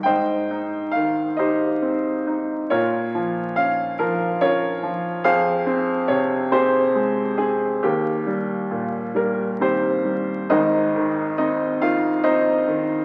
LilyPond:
<<
  \new Staff \with { instrumentName = "Upright piano" } { \time 6/8 \key aes \major \tempo 4. = 46 << { g''4 f''8 ees''4 r8 | des''4 f''8 bes'8 des''4 | f''4 des''8 c''4 aes'8 | g'4. bes'8 c''4 |
ees''4 ees''8 f''8 ees''4 | } \\ { <c'' ees''>4. <g' c''>4. | <f' bes'>4. r8 <f' bes'>4 | <aes' c''>4. <g' aes'>4. | bes4. bes8 <c' g'>4 |
<ees' bes' c''>4 ees'8 f'8 <ees' c''>4 | } >> }
  \new Staff \with { instrumentName = "Upright piano" } { \clef bass \time 6/8 \key aes \major aes,8 ees'8 ees8 ees'8 c'8 ees'8 | bes,8 f8 des'8 f8 des'8 f8 | f,8 c'8 c8 c'8 aes8 c'8 | ees,8 g8 bes,8 g8 ees8 g8 |
<aes,, aes,>8 ees8 c'8 ees8 c'8 ees8 | }
>>